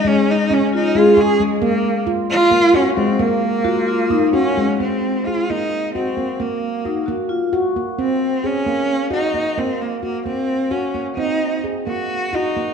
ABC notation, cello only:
X:1
M:7/8
L:1/16
Q:1/4=132
K:Abmix
V:1 name="Cello"
D2 E2 D2 E2 F2 A2 A,2 | B,4 z2 F4 D2 C2 | B,8- B,2 D4 | C4 F2 E4 C4 |
B,6 z8 | C4 D6 E4 | C2 B,2 B,2 C4 D3 z | E4 z2 G4 E4 |]